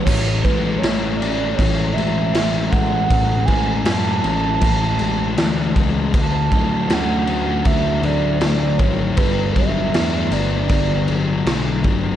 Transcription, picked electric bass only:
X:1
M:4/4
L:1/8
Q:1/4=79
K:A
V:1 name="Picked electric bass" clef=bass
A,,, A,,, A,,,2 A,,, A,,, A,,, A,,, | A,,, A,,, F,, A,,, A,,,2 D,, C,, | D,, D,, D,,2 D,, D,, D,, G,,, | =G,,, G,,, E,, G,,, G,,,2 B,,, G,,, |]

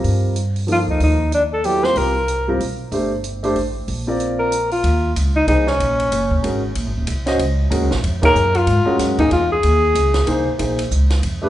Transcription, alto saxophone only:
X:1
M:3/4
L:1/8
Q:"Swing" 1/4=188
K:Cdor
V:1 name="Alto saxophone"
z4 F E | E2 D A G c | B4 z2 | z6 |
z3 B2 F- | [K:Ebdor] F2 z E E D- | D4- D z | z6 |
z3 B2 F- | F2 z E F A- | A4- A z | z6 |]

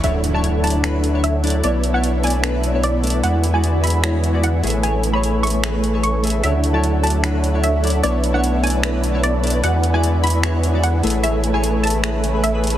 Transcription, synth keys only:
X:1
M:4/4
L:1/16
Q:1/4=150
K:A
V:1 name="Synth keys"
[F,DEc] z2 [F,DEc]3 [F,DEd]2 [F,DEB]3 [F,DEc] z2 [F,DEd]2 | [A,DEc] z2 [A,DEc]3 [A,DEd]2 [A,DEB]3 [A,DEc] z2 [A,DEd]2 | [G,EFd] z2 [G,EFd]3 [G,EFe]2 [G,EFc]3 [G,EFd] z2 [A,EGe]2 | [A,EGc] z2 [A,EGc]3 [A,EGe]2 [A,EGB]3 [A,EGc] z2 [A,EGe]2 |
[F,DEc] z2 [F,DEc]3 [F,DEd]2 [F,DEB]3 [F,DEc] z2 [F,DEd]2 | [A,DEc] z2 [A,DEc]3 [A,DEd]2 [A,DEB]3 [A,DEc] z2 [A,DEd]2 | [G,EFd] z2 [G,EFd]3 [G,EFe]2 [G,EFc]3 [G,EFd] z2 [A,EGe]2 | [A,EGc] z2 [A,EGc]3 [A,EGe]2 [A,EGB]3 [A,EGB] z [A,EGB]2 [A,EG] |]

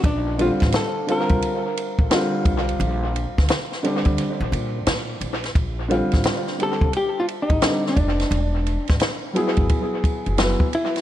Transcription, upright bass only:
X:1
M:4/4
L:1/16
Q:"Swing 16ths" 1/4=87
K:Bb
V:1 name="Upright bass" clef=bass
B,,,3 A,,, z3 C,, z3 B,,, z2 _C,,2 | B,,,3 D,, z3 D,, z B,,, B,,2 B,,2 B,,,2 | B,,,3 A,,, z3 C,, z3 A,,, z2 F,,,2 | =E,,,3 ^G,,, z3 G,,, z3 ^F,,,2 z3 |]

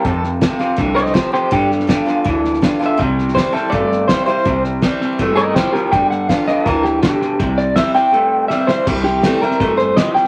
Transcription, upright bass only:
X:1
M:4/4
L:1/8
Q:1/4=163
K:C
V:1 name="Upright bass" clef=bass
F,,3 z C,,3 z | G,,3 z D,,3 z | C,,3 z G,,,3 z | C,,3 z G,,,3 z |
G,,,3 z D,,3 z | C,,3 z4 z | C,,3 z G,,,3 z |]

